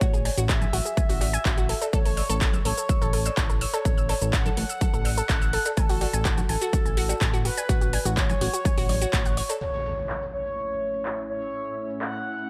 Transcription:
Already playing: C#5
0.01 A1 F#4, kick, closed hi-hat, shaker
0.13 G#4, shaker
0.25 G#5, open hi-hat, cowbell
0.37 A1 F#4, closed hi-hat, shaker
0.49 G#4 E5, kick, clap, closed hi-hat, shaker
0.61 G#5, high conga, shaker
0.73 A1 F#4, open hi-hat
0.85 G#4, closed hi-hat, shaker
0.97 G#5, kick, closed hi-hat, high conga, shaker
1.09 A1 F#4, open hi-hat, shaker
1.21 F#4, open hi-hat, cowbell
1.33 G#5, closed hi-hat, shaker
1.45 A1 F#4, kick, clap, closed hi-hat, shaker
1.57 F#4, closed hi-hat, shaker
1.69 A4, open hi-hat
1.82 A4, closed hi-hat, cowbell, shaker
1.93 A1 A4 C#5, kick, closed hi-hat, shaker
2.05 A4, open hi-hat, shaker
2.17 E6, open hi-hat, cowbell
2.29 A1 A4, closed hi-hat, shaker
2.41 A4, kick, clap, closed hi-hat, shaker
2.53 E6, high conga, shaker
2.65 A1 A4 C#5, open hi-hat
2.77 A4, closed hi-hat, shaker
2.89 E6, kick, closed hi-hat, high conga, shaker
3.01 A1 A4, shaker
3.13 A4, open hi-hat
3.26 E6, closed hi-hat, cowbell, shaker
3.37 A1 A4, kick, clap, closed hi-hat, shaker
3.50 A4, shaker
3.61 C#5 E6, open hi-hat
3.74 A4, closed hi-hat, cowbell, shaker
3.85 A1 A4, kick, closed hi-hat, shaker
3.98 E6, shaker
4.09 A4, open hi-hat, cowbell
4.21 A1 A4, closed hi-hat, shaker
4.33 F#5 E6, kick, clap, closed hi-hat, shaker
4.46 A4, high conga, shaker
4.57 A1 A4, open hi-hat
4.69 E6, closed hi-hat, shaker
4.81 A4, kick, closed hi-hat, high conga, shaker
4.94 A1 A4, shaker
5.05 E6, open hi-hat, cowbell
5.17 A4, closed hi-hat, shaker
5.29 A1 A4, kick, clap, closed hi-hat, shaker
5.42 E6, shaker
5.53 A4, open hi-hat
5.65 A4, closed hi-hat, cowbell, shaker
5.77 A1 A4 G#5, kick, closed hi-hat, shaker
5.89 F#4, open hi-hat, shaker
6.01 F#4, open hi-hat, cowbell
6.13 A1 G#5, closed hi-hat, shaker
6.25 F#4, kick, clap, closed hi-hat, shaker
6.37 F#4, high conga, shaker
6.49 A1 A4 G#5, open hi-hat
6.61 F#4, closed hi-hat, shaker
6.73 F#4, kick, closed hi-hat, high conga, shaker
6.85 A1 G#5, shaker
6.97 F#4, open hi-hat
7.09 F#4, closed hi-hat, cowbell, shaker
7.21 A1 G#5, kick, clap, closed hi-hat, shaker
7.33 F#4, shaker
7.45 F#4 B4, open hi-hat
7.57 G#5, closed hi-hat, cowbell, shaker
7.69 A1 F#4, kick, closed hi-hat, shaker
7.81 F#4, closed hi-hat, shaker
7.93 G#5, open hi-hat, cowbell
8.05 A1 F#4, closed hi-hat, shaker
8.17 F#4 C#5, kick, clap, closed hi-hat, shaker
8.29 G#5, closed hi-hat, high conga, shaker
8.41 A1 F#4, open hi-hat
8.54 F#4, closed hi-hat, shaker
8.65 G#5, kick, closed hi-hat, high conga, shaker
8.77 A1 F#4, open hi-hat, shaker
8.89 C#5, open hi-hat, cowbell, high conga
9.02 F#4, closed hi-hat, shaker
9.13 A1 F#5, kick, clap, closed hi-hat, shaker
9.25 F#5, closed hi-hat, shaker
9.37 C#5, open hi-hat
9.49 A4, closed hi-hat, cowbell, shaker
9.61 A2 A3 C#4 E4 C#5 E5, impact, shaker
9.98 shaker
10.09 clap, shaker
10.22 shaker
10.33 C#5
10.46 shaker
10.58 shaker
10.70 shaker
10.94 shaker
11.05 clap, shaker
11.18 shaker
11.29 C#5
11.42 shaker
11.53 F#5, shaker
11.66 shaker
11.90 shaker
12.01 F#5, clap, shaker
12.14 shaker
12.38 shaker

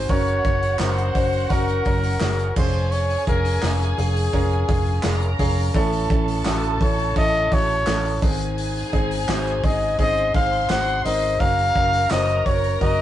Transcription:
Already playing: C4 D#4 F#4 G#4 A#4 C5
0.09 F#1 C#3 C#4 F#4 A#4 C#5 F#5, kick, hi-hat pedal, open hi-hat
0.27 hi-hat pedal
0.44 F#1 C#4 F#4 C#5, kick, hi-hat pedal, open hi-hat
0.63 open hi-hat
0.79 F#1 C#4 F#4 A#4 C5, snare, clap, hi-hat pedal, open hi-hat
0.98 hi-hat pedal
1.15 F#1 C#4 F#4 C5, kick, hi-hat pedal, open hi-hat
1.33 open hi-hat
1.50 F#1 C#4 F#4 A#4, kick, hi-hat pedal, open hi-hat
1.68 hi-hat pedal, open hi-hat
1.85 F#1 C#4 F#4 A#4, kick, hi-hat pedal, open hi-hat
2.03 hi-hat pedal, open hi-hat
2.20 F#1 C#4 F#4 G#4, snare, clap, hi-hat pedal, open hi-hat
2.39 hi-hat pedal
2.56 F1 F3 C#4 F4 G#4 C5 G#5, kick, crash
2.74 open hi-hat
2.91 C#5, hi-hat pedal, open hi-hat
3.10 hi-hat pedal, open hi-hat
3.27 F1 C#4 F4 G#4 A#4, kick, hi-hat pedal, open hi-hat
3.45 hi-hat pedal, open hi-hat
3.62 F1 C#4 F4 A#4, snare, clap, hi-hat pedal, open hi-hat
3.81 hi-hat pedal, open hi-hat
3.98 F1 C#4 F4 G#4, hi-hat pedal, open hi-hat
4.16 hi-hat pedal, open hi-hat
4.33 F1 C#4 F4 A#4, kick, hi-hat pedal, open hi-hat
4.51 hi-hat pedal
4.68 F1 C#4 F4 G#4, kick, hi-hat pedal, open hi-hat
4.87 open hi-hat
5.03 F1 C#4 F4 G#4 A#4 A#5, snare, clap, hi-hat pedal, open hi-hat
5.21 hi-hat pedal
5.39 F1 C#4 F4 G#4, kick, hi-hat pedal, open hi-hat
5.57 open hi-hat
5.74 A1 A2 E3 C#4 E4 A4 A5, kick, hi-hat pedal, open hi-hat
5.92 hi-hat pedal, open hi-hat
6.10 A1 C#4 E4 A4, kick, hi-hat pedal, open hi-hat
6.28 hi-hat pedal, open hi-hat
6.45 A1 C#4 E4 F#4 A4, snare, clap, hi-hat pedal, open hi-hat
6.63 hi-hat pedal
6.81 A1 C#4 E4 A4 C#5, kick, hi-hat pedal, open hi-hat
6.99 open hi-hat
7.16 A1 C#4 E4 A4 D#5, kick, hi-hat pedal, open hi-hat
7.34 hi-hat pedal
7.52 A1 C#4 E4 F#4 C#5, kick, snare, hi-hat pedal, open hi-hat
7.70 open hi-hat
7.87 A1 C#4 E4 A4, snare, clap, hi-hat pedal, open hi-hat
8.05 hi-hat pedal, open hi-hat
8.22 G#1 G#2 D#3 C4 D#4 G#4 G#5, kick, hi-hat pedal, open hi-hat
8.40 hi-hat pedal, open hi-hat
8.58 hi-hat pedal, open hi-hat
8.76 hi-hat pedal, open hi-hat
8.93 G#1 C4 D#4 G#4, kick, hi-hat pedal, open hi-hat
9.11 hi-hat pedal, open hi-hat
9.28 G#1 C4 D#4 F#4 C5, snare, clap, hi-hat pedal, open hi-hat
9.46 hi-hat pedal
9.64 G#1 C4 D#4 G#4 D#5, kick, hi-hat pedal, open hi-hat
9.82 open hi-hat
9.98 G#1 C4 D#4 G#4 C5 D#5 C6, kick, hi-hat pedal, open hi-hat
10.17 hi-hat pedal
10.34 G#1 C4 D#4 G#4 F5, kick, hi-hat pedal, open hi-hat
10.53 open hi-hat
10.69 G#1 C4 D#4 F#4 F#5, snare, clap, hi-hat pedal, open hi-hat
10.88 hi-hat pedal
11.05 G#1 C4 D#4 A#4 D#5, hi-hat pedal, open hi-hat
11.23 open hi-hat
11.40 F#1 C#3 C#4 F#4 A#4 F5 A#5, kick, hi-hat pedal, open hi-hat
11.58 hi-hat pedal, open hi-hat
11.75 F#1 C#4 F#4 A#4, kick, hi-hat pedal, open hi-hat
11.93 hi-hat pedal, open hi-hat
12.10 F#1 C#4 F#4 C5 D#5, snare, clap, hi-hat pedal, open hi-hat
12.28 hi-hat pedal
12.46 F#1 C#4 F#4 C#5, kick, hi-hat pedal, open hi-hat
12.64 open hi-hat
12.81 F#1 C#4 F#4 A#4 D#5, kick, hi-hat pedal, open hi-hat

